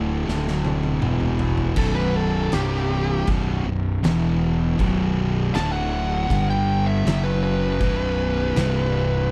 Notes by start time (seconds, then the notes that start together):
Already playing: D1 D2 A2 D3
0.27 D1 D2 A2 D3, snare
0.48 snare
0.65 high tom
0.83 high tom
1.01 E1 E2 B2 E3, mid tom
1.20 mid tom
1.39 floor tom
1.58 floor tom
1.76 B0 B1 F#2 B2 A4, kick, crash
1.96 B4
2.16 A4
2.52 C1 C2 G2 C3 G4, snare, crash
3.27 B0 B1 F#2 B2, kick, crash
3.66 B0 B1 F#2
4.03 E1 E2 B2 E3, snare, crash
4.79 B0 B1 F#2 B2, kick, crash
5.54 D1 D2 A2 D3 A5, snare, crash
5.72 F#5
6.29 G1 G2 D3 G3, kick, crash
6.50 G5
6.86 E5
7.05 F#1 F#2 C#3 F#3, snare, crash
7.23 B4
7.43 B4
7.80 B0 B1 F#2 B2, kick, crash
8.56 C1 C2 G2 C3, snare, crash